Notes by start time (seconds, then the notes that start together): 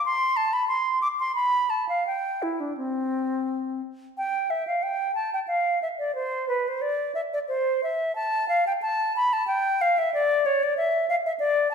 0.06 C6
0.37 A5
0.53 B5
0.68 C6
1.02 D6
1.19 C6
1.35 B5
1.70 A5
1.89 F5
2.07 G5
2.42 E4
2.60 D4
2.77 C4
4.18 G5
4.50 E5
4.67 F5
4.83 G5
5.15 A5
5.34 G5
5.48 F5
5.82 E5
5.99 D5
6.15 C5
6.49 B4
6.68 C5
6.82 D5
7.15 E5
7.33 D5
7.48 C5
7.83 E5
8.15 A5
8.49 F5
8.67 G5
8.82 A5
9.16 B5
9.33 A5
9.47 G5
9.81 F5
9.98 E5
10.14 D5
10.46 C#5
10.63 D5
10.77 E5
11.09 F5
11.26 E5
11.39 D5
11.71 A5